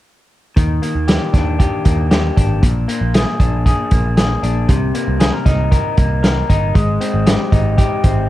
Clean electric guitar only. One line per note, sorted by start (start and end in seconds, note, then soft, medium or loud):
0.56 2.63 D#3 medium
0.82 1.84 A#3 medium
1.08 1.58 G4 medium
1.33 2.36 D4 medium
1.59 2.09 G4 medium
1.85 2.88 A#3 medium
2.11 2.68 G4 medium
2.36 3.17 D4 medium
2.62 4.69 A#2 medium
2.88 3.91 A#3 medium
3.14 3.65 G#4 medium
3.40 4.42 D4 medium
3.66 4.16 G#4 medium
3.92 4.94 A#3 soft
4.17 4.74 G#4 medium
4.43 4.74 D4 medium
4.68 6.75 C3 medium
4.94 5.96 A#3 medium
5.20 5.33 G#4 medium
5.33 5.70 A#4 medium
5.45 6.49 D#4 medium
5.71 6.22 A#4 medium
5.97 6.80 A#3 medium
6.23 6.80 A#4 medium
6.49 7.52 D#4 soft
6.75 8.29 G#3 medium
7.01 8.02 C4 medium
7.26 7.77 G4 medium
7.52 8.29 D#4 medium
7.78 8.29 G4 medium
8.03 8.29 C4 medium